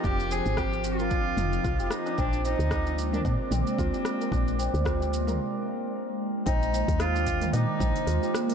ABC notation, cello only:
X:1
M:4/4
L:1/16
Q:"Swing 16ths" 1/4=112
K:Bbmix
V:1 name="Cello"
G2 A2 G2 F6- F3/2 F/2 E2 | D2 E4- E D C8- | C8 z8 | E4 F4 E6 B,2 |]